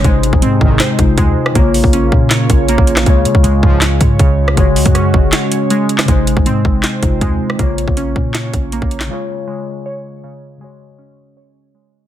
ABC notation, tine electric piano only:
X:1
M:4/4
L:1/8
Q:1/4=159
K:Abmix
V:1 name="Tine electric piano"
[C,A,Ec]4- [C,A,Ec] [C,A,EF]3 | [D,B,Fd]8 | [D,A,Fd]8 | [D,A,Gd]8 |
[C,A,Ec]4- [C,A,Ec] [C,A,EF]3 | [D,B,Fd]8 | [D,A,Fd]8 | [D,A,Gd]8 |]